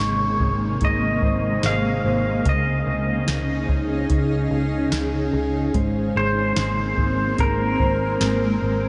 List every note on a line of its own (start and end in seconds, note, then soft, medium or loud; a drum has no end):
0.00 0.35 G#1 medium
0.00 2.43 C3 medium
0.00 2.43 G#3 medium
0.00 2.45 G#3 medium
0.00 2.43 A#3 medium
0.00 0.81 D#4 soft
0.00 0.40 G#4 medium
0.00 0.84 C#5 medium
0.40 0.76 G#1 medium
0.40 1.64 G#4 medium
0.40 kick medium
0.81 1.18 G#1 medium
0.81 2.86 D#4 medium
0.81 1.68 D#5 medium
0.81 kick medium
0.81 closed hi-hat medium
1.22 1.59 G#1 medium
1.22 2.03 C5 medium
1.22 kick medium
1.63 2.00 G#1 medium
1.63 2.46 G#4 medium
1.63 2.49 F5 loud
1.63 snare medium
1.63 closed hi-hat medium
2.05 2.41 G#1 medium
2.05 2.45 C5 medium
2.45 2.82 C#2 medium
2.45 5.74 C#3 medium
2.45 5.71 C#3 medium
2.45 5.71 C#4 medium
2.45 5.71 D#4 medium
2.45 4.51 G#4 medium
2.45 5.71 G#4 medium
2.45 4.08 D#5 medium
2.45 kick medium
2.45 closed hi-hat medium
2.86 3.23 C#2 medium
2.86 3.68 D#4 soft
3.27 3.64 C#2 medium
3.27 4.09 C#4 soft
3.27 snare loud
3.27 closed hi-hat soft
3.69 4.05 C#2 medium
3.69 4.92 D#4 medium
3.69 kick medium
4.10 4.46 C#2 loud
4.10 5.82 C#4 medium
4.10 kick medium
4.10 closed hi-hat medium
4.51 4.87 C#2 medium
4.51 5.33 G#4 medium
4.92 5.28 C#2 medium
4.92 6.15 D#4 medium
4.92 snare medium
4.92 closed hi-hat medium
5.33 5.69 C#2 medium
5.33 5.75 G#4 medium
5.74 6.11 G#1 medium
5.74 8.89 G#3 medium
5.74 8.89 A#3 medium
5.74 8.89 C4 medium
5.74 7.79 C5 medium
5.74 kick medium
5.74 closed hi-hat medium
6.16 6.52 G#1 medium
6.16 6.97 G#4 medium
6.16 7.36 C5 medium
6.56 6.93 G#1 medium
6.56 7.38 D#4 soft
6.56 snare loud
6.56 closed hi-hat medium
6.97 7.34 G#1 medium
6.97 8.20 G#4 medium
6.97 kick medium
7.38 7.75 G#1 medium
7.38 8.89 D#4 medium
7.38 8.89 A#4 medium
7.38 kick medium
7.38 closed hi-hat medium
7.80 8.16 G#1 medium
7.80 8.61 C5 medium
7.80 kick medium
8.21 8.57 G#1 medium
8.21 8.89 G#4 soft
8.21 snare loud
8.21 closed hi-hat medium
8.62 8.89 G#1 medium
8.62 8.89 C5 medium